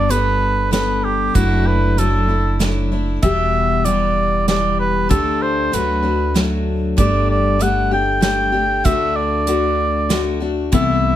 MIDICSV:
0, 0, Header, 1, 5, 480
1, 0, Start_track
1, 0, Tempo, 625000
1, 1039, Time_signature, 3, 2, 24, 8
1, 8570, End_track
2, 0, Start_track
2, 0, Title_t, "Oboe"
2, 0, Program_c, 0, 68
2, 0, Note_on_c, 0, 74, 89
2, 81, Note_on_c, 0, 71, 88
2, 93, Note_off_c, 0, 74, 0
2, 556, Note_off_c, 0, 71, 0
2, 560, Note_on_c, 0, 71, 75
2, 801, Note_on_c, 0, 67, 74
2, 813, Note_off_c, 0, 71, 0
2, 1039, Note_on_c, 0, 66, 75
2, 1050, Note_off_c, 0, 67, 0
2, 1281, Note_on_c, 0, 71, 76
2, 1292, Note_off_c, 0, 66, 0
2, 1526, Note_on_c, 0, 69, 65
2, 1538, Note_off_c, 0, 71, 0
2, 2003, Note_off_c, 0, 69, 0
2, 2479, Note_on_c, 0, 76, 94
2, 2956, Note_on_c, 0, 74, 87
2, 2968, Note_off_c, 0, 76, 0
2, 3438, Note_off_c, 0, 74, 0
2, 3445, Note_on_c, 0, 74, 80
2, 3666, Note_off_c, 0, 74, 0
2, 3685, Note_on_c, 0, 71, 70
2, 3906, Note_off_c, 0, 71, 0
2, 3919, Note_on_c, 0, 69, 73
2, 4162, Note_on_c, 0, 72, 80
2, 4174, Note_off_c, 0, 69, 0
2, 4409, Note_on_c, 0, 71, 67
2, 4420, Note_off_c, 0, 72, 0
2, 4885, Note_off_c, 0, 71, 0
2, 5365, Note_on_c, 0, 74, 84
2, 5586, Note_off_c, 0, 74, 0
2, 5611, Note_on_c, 0, 74, 81
2, 5855, Note_on_c, 0, 78, 87
2, 5866, Note_off_c, 0, 74, 0
2, 6086, Note_off_c, 0, 78, 0
2, 6090, Note_on_c, 0, 79, 84
2, 6309, Note_off_c, 0, 79, 0
2, 6321, Note_on_c, 0, 79, 91
2, 6798, Note_on_c, 0, 76, 86
2, 6809, Note_off_c, 0, 79, 0
2, 7037, Note_on_c, 0, 74, 77
2, 7048, Note_off_c, 0, 76, 0
2, 7999, Note_off_c, 0, 74, 0
2, 8250, Note_on_c, 0, 76, 90
2, 8570, Note_off_c, 0, 76, 0
2, 8570, End_track
3, 0, Start_track
3, 0, Title_t, "Steel-string acoustic guitar"
3, 0, Program_c, 1, 25
3, 0, Note_on_c, 1, 69, 71
3, 69, Note_on_c, 1, 55, 52
3, 76, Note_on_c, 1, 59, 48
3, 79, Note_on_c, 1, 62, 51
3, 83, Note_off_c, 1, 69, 0
3, 86, Note_on_c, 1, 69, 54
3, 535, Note_off_c, 1, 55, 0
3, 540, Note_off_c, 1, 59, 0
3, 544, Note_off_c, 1, 62, 0
3, 544, Note_on_c, 1, 55, 52
3, 549, Note_on_c, 1, 59, 51
3, 553, Note_off_c, 1, 69, 0
3, 553, Note_on_c, 1, 62, 44
3, 563, Note_on_c, 1, 69, 54
3, 1028, Note_off_c, 1, 55, 0
3, 1031, Note_off_c, 1, 62, 0
3, 1031, Note_on_c, 1, 54, 59
3, 1034, Note_off_c, 1, 59, 0
3, 1037, Note_on_c, 1, 57, 70
3, 1040, Note_on_c, 1, 62, 78
3, 1041, Note_off_c, 1, 69, 0
3, 1047, Note_on_c, 1, 64, 79
3, 1508, Note_off_c, 1, 54, 0
3, 1512, Note_off_c, 1, 57, 0
3, 1517, Note_on_c, 1, 54, 51
3, 1518, Note_off_c, 1, 62, 0
3, 1521, Note_on_c, 1, 57, 53
3, 1527, Note_on_c, 1, 62, 53
3, 1529, Note_off_c, 1, 64, 0
3, 1532, Note_on_c, 1, 64, 54
3, 1742, Note_off_c, 1, 64, 0
3, 1751, Note_off_c, 1, 62, 0
3, 1751, Note_on_c, 1, 64, 39
3, 1757, Note_off_c, 1, 57, 0
3, 1758, Note_off_c, 1, 54, 0
3, 1760, Note_on_c, 1, 62, 33
3, 1766, Note_on_c, 1, 57, 29
3, 1986, Note_off_c, 1, 57, 0
3, 1992, Note_on_c, 1, 54, 50
3, 1993, Note_off_c, 1, 62, 0
3, 1995, Note_off_c, 1, 64, 0
3, 1995, Note_on_c, 1, 57, 49
3, 2002, Note_on_c, 1, 62, 50
3, 2007, Note_on_c, 1, 64, 52
3, 2230, Note_off_c, 1, 64, 0
3, 2234, Note_off_c, 1, 62, 0
3, 2236, Note_off_c, 1, 54, 0
3, 2237, Note_off_c, 1, 57, 0
3, 2239, Note_on_c, 1, 64, 44
3, 2244, Note_on_c, 1, 62, 38
3, 2251, Note_on_c, 1, 57, 39
3, 2478, Note_on_c, 1, 47, 68
3, 2479, Note_on_c, 1, 40, 60
3, 2480, Note_off_c, 1, 64, 0
3, 2482, Note_off_c, 1, 62, 0
3, 2483, Note_off_c, 1, 57, 0
3, 2484, Note_on_c, 1, 52, 63
3, 2485, Note_on_c, 1, 59, 68
3, 2486, Note_on_c, 1, 55, 66
3, 2489, Note_on_c, 1, 67, 82
3, 2943, Note_off_c, 1, 52, 0
3, 2949, Note_off_c, 1, 55, 0
3, 2952, Note_on_c, 1, 52, 49
3, 2956, Note_off_c, 1, 59, 0
3, 2957, Note_off_c, 1, 67, 0
3, 2958, Note_on_c, 1, 55, 50
3, 2959, Note_off_c, 1, 47, 0
3, 2960, Note_off_c, 1, 40, 0
3, 2965, Note_on_c, 1, 59, 56
3, 2967, Note_on_c, 1, 67, 52
3, 3429, Note_off_c, 1, 52, 0
3, 3434, Note_off_c, 1, 55, 0
3, 3439, Note_on_c, 1, 52, 45
3, 3440, Note_off_c, 1, 59, 0
3, 3443, Note_on_c, 1, 55, 53
3, 3444, Note_off_c, 1, 67, 0
3, 3450, Note_on_c, 1, 59, 48
3, 3453, Note_on_c, 1, 67, 56
3, 3907, Note_off_c, 1, 52, 0
3, 3907, Note_off_c, 1, 55, 0
3, 3909, Note_off_c, 1, 67, 0
3, 3910, Note_on_c, 1, 50, 62
3, 3910, Note_on_c, 1, 57, 73
3, 3914, Note_off_c, 1, 59, 0
3, 3917, Note_on_c, 1, 62, 66
3, 3918, Note_on_c, 1, 67, 68
3, 4390, Note_off_c, 1, 50, 0
3, 4393, Note_on_c, 1, 54, 50
3, 4396, Note_off_c, 1, 57, 0
3, 4399, Note_off_c, 1, 62, 0
3, 4399, Note_on_c, 1, 57, 55
3, 4400, Note_off_c, 1, 67, 0
3, 4402, Note_on_c, 1, 62, 51
3, 4409, Note_on_c, 1, 66, 55
3, 4617, Note_off_c, 1, 66, 0
3, 4624, Note_off_c, 1, 62, 0
3, 4627, Note_on_c, 1, 66, 38
3, 4633, Note_on_c, 1, 62, 36
3, 4634, Note_off_c, 1, 57, 0
3, 4637, Note_off_c, 1, 54, 0
3, 4643, Note_on_c, 1, 57, 29
3, 4869, Note_off_c, 1, 57, 0
3, 4873, Note_on_c, 1, 54, 53
3, 4874, Note_off_c, 1, 66, 0
3, 4877, Note_off_c, 1, 62, 0
3, 4878, Note_on_c, 1, 57, 51
3, 4885, Note_on_c, 1, 62, 50
3, 4885, Note_on_c, 1, 66, 50
3, 5347, Note_off_c, 1, 54, 0
3, 5350, Note_on_c, 1, 55, 68
3, 5354, Note_off_c, 1, 57, 0
3, 5354, Note_off_c, 1, 62, 0
3, 5356, Note_off_c, 1, 66, 0
3, 5357, Note_on_c, 1, 57, 66
3, 5357, Note_on_c, 1, 62, 72
3, 5359, Note_on_c, 1, 67, 76
3, 5821, Note_off_c, 1, 55, 0
3, 5830, Note_on_c, 1, 55, 47
3, 5831, Note_off_c, 1, 57, 0
3, 5833, Note_off_c, 1, 67, 0
3, 5834, Note_on_c, 1, 57, 55
3, 5837, Note_off_c, 1, 62, 0
3, 5841, Note_on_c, 1, 62, 48
3, 5842, Note_on_c, 1, 67, 59
3, 6068, Note_off_c, 1, 67, 0
3, 6075, Note_off_c, 1, 62, 0
3, 6076, Note_off_c, 1, 55, 0
3, 6077, Note_off_c, 1, 57, 0
3, 6077, Note_on_c, 1, 67, 42
3, 6084, Note_on_c, 1, 62, 34
3, 6092, Note_on_c, 1, 57, 36
3, 6298, Note_off_c, 1, 57, 0
3, 6303, Note_on_c, 1, 55, 46
3, 6305, Note_off_c, 1, 62, 0
3, 6307, Note_on_c, 1, 57, 51
3, 6311, Note_off_c, 1, 67, 0
3, 6314, Note_on_c, 1, 62, 47
3, 6320, Note_on_c, 1, 67, 59
3, 6536, Note_off_c, 1, 67, 0
3, 6545, Note_on_c, 1, 67, 43
3, 6547, Note_off_c, 1, 62, 0
3, 6552, Note_off_c, 1, 55, 0
3, 6554, Note_off_c, 1, 57, 0
3, 6556, Note_on_c, 1, 62, 35
3, 6563, Note_on_c, 1, 57, 32
3, 6784, Note_off_c, 1, 57, 0
3, 6787, Note_off_c, 1, 62, 0
3, 6789, Note_on_c, 1, 50, 61
3, 6793, Note_off_c, 1, 67, 0
3, 6793, Note_on_c, 1, 57, 67
3, 6796, Note_on_c, 1, 62, 66
3, 6799, Note_on_c, 1, 66, 79
3, 7263, Note_off_c, 1, 50, 0
3, 7271, Note_off_c, 1, 57, 0
3, 7272, Note_on_c, 1, 50, 49
3, 7273, Note_off_c, 1, 62, 0
3, 7274, Note_on_c, 1, 57, 52
3, 7275, Note_off_c, 1, 66, 0
3, 7282, Note_on_c, 1, 62, 50
3, 7284, Note_on_c, 1, 66, 50
3, 7742, Note_off_c, 1, 50, 0
3, 7750, Note_off_c, 1, 62, 0
3, 7751, Note_on_c, 1, 50, 51
3, 7752, Note_off_c, 1, 57, 0
3, 7755, Note_on_c, 1, 57, 56
3, 7759, Note_off_c, 1, 66, 0
3, 7760, Note_on_c, 1, 62, 66
3, 7768, Note_on_c, 1, 66, 63
3, 7981, Note_off_c, 1, 66, 0
3, 7991, Note_off_c, 1, 62, 0
3, 7991, Note_on_c, 1, 66, 46
3, 7996, Note_off_c, 1, 50, 0
3, 7996, Note_off_c, 1, 57, 0
3, 8000, Note_on_c, 1, 62, 45
3, 8005, Note_on_c, 1, 57, 37
3, 8227, Note_off_c, 1, 57, 0
3, 8231, Note_on_c, 1, 48, 66
3, 8233, Note_on_c, 1, 52, 71
3, 8236, Note_off_c, 1, 66, 0
3, 8236, Note_on_c, 1, 57, 75
3, 8238, Note_off_c, 1, 62, 0
3, 8241, Note_on_c, 1, 59, 77
3, 8242, Note_on_c, 1, 64, 73
3, 8570, Note_off_c, 1, 48, 0
3, 8570, Note_off_c, 1, 52, 0
3, 8570, Note_off_c, 1, 57, 0
3, 8570, Note_off_c, 1, 59, 0
3, 8570, Note_off_c, 1, 64, 0
3, 8570, End_track
4, 0, Start_track
4, 0, Title_t, "Upright bass"
4, 0, Program_c, 2, 32
4, 0, Note_on_c, 2, 31, 62
4, 1010, Note_off_c, 2, 31, 0
4, 1038, Note_on_c, 2, 30, 69
4, 2450, Note_off_c, 2, 30, 0
4, 2481, Note_on_c, 2, 28, 61
4, 3892, Note_off_c, 2, 28, 0
4, 3923, Note_on_c, 2, 38, 63
4, 4392, Note_off_c, 2, 38, 0
4, 4405, Note_on_c, 2, 38, 64
4, 5344, Note_off_c, 2, 38, 0
4, 5358, Note_on_c, 2, 31, 66
4, 6771, Note_off_c, 2, 31, 0
4, 6798, Note_on_c, 2, 38, 65
4, 8211, Note_off_c, 2, 38, 0
4, 8240, Note_on_c, 2, 36, 68
4, 8570, Note_off_c, 2, 36, 0
4, 8570, End_track
5, 0, Start_track
5, 0, Title_t, "Drums"
5, 80, Note_on_c, 9, 42, 44
5, 157, Note_off_c, 9, 42, 0
5, 559, Note_on_c, 9, 38, 57
5, 559, Note_on_c, 9, 42, 44
5, 635, Note_off_c, 9, 38, 0
5, 635, Note_off_c, 9, 42, 0
5, 1037, Note_on_c, 9, 36, 72
5, 1039, Note_on_c, 9, 42, 41
5, 1114, Note_off_c, 9, 36, 0
5, 1116, Note_off_c, 9, 42, 0
5, 1522, Note_on_c, 9, 42, 41
5, 1599, Note_off_c, 9, 42, 0
5, 1998, Note_on_c, 9, 38, 51
5, 1998, Note_on_c, 9, 42, 38
5, 2075, Note_off_c, 9, 38, 0
5, 2075, Note_off_c, 9, 42, 0
5, 2477, Note_on_c, 9, 42, 42
5, 2479, Note_on_c, 9, 36, 77
5, 2554, Note_off_c, 9, 42, 0
5, 2556, Note_off_c, 9, 36, 0
5, 2961, Note_on_c, 9, 42, 42
5, 3038, Note_off_c, 9, 42, 0
5, 3441, Note_on_c, 9, 38, 57
5, 3441, Note_on_c, 9, 42, 43
5, 3517, Note_off_c, 9, 38, 0
5, 3517, Note_off_c, 9, 42, 0
5, 3921, Note_on_c, 9, 42, 43
5, 3922, Note_on_c, 9, 36, 76
5, 3998, Note_off_c, 9, 36, 0
5, 3998, Note_off_c, 9, 42, 0
5, 4404, Note_on_c, 9, 42, 44
5, 4481, Note_off_c, 9, 42, 0
5, 4882, Note_on_c, 9, 38, 55
5, 4882, Note_on_c, 9, 42, 42
5, 4958, Note_off_c, 9, 38, 0
5, 4958, Note_off_c, 9, 42, 0
5, 5360, Note_on_c, 9, 36, 74
5, 5360, Note_on_c, 9, 42, 45
5, 5436, Note_off_c, 9, 36, 0
5, 5437, Note_off_c, 9, 42, 0
5, 5841, Note_on_c, 9, 42, 42
5, 5918, Note_off_c, 9, 42, 0
5, 6316, Note_on_c, 9, 38, 58
5, 6316, Note_on_c, 9, 42, 44
5, 6393, Note_off_c, 9, 38, 0
5, 6393, Note_off_c, 9, 42, 0
5, 6796, Note_on_c, 9, 42, 44
5, 6799, Note_on_c, 9, 36, 75
5, 6873, Note_off_c, 9, 42, 0
5, 6876, Note_off_c, 9, 36, 0
5, 7273, Note_on_c, 9, 42, 45
5, 7350, Note_off_c, 9, 42, 0
5, 7758, Note_on_c, 9, 38, 55
5, 7758, Note_on_c, 9, 42, 46
5, 7835, Note_off_c, 9, 38, 0
5, 7835, Note_off_c, 9, 42, 0
5, 8236, Note_on_c, 9, 42, 44
5, 8239, Note_on_c, 9, 36, 78
5, 8313, Note_off_c, 9, 42, 0
5, 8315, Note_off_c, 9, 36, 0
5, 8570, End_track
0, 0, End_of_file